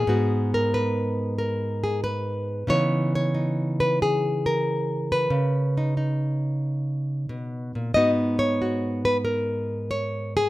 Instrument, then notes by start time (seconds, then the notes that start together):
nylon-string guitar
Already playing: G#4
0.07 G#2 B3 D#4 F#4
0.54 A#4
0.74 B4
1.39 A#4
1.84 G#4
2.04 B4
2.67 C#3 E3 B3 D#4 C#5
3.15 C#5
3.35 D#4
3.80 B4
4.02 G#4
4.46 A#4
5.12 B4
5.30 C#3
5.77 D#4
5.97 D#4
7.29 B2
7.75 A#2
7.94 G#2 B3 D#4 F#4 D#5
8.39 C#5
8.62 F#4
9.05 B4
9.25 A#4
9.91 C#5
10.37 G#4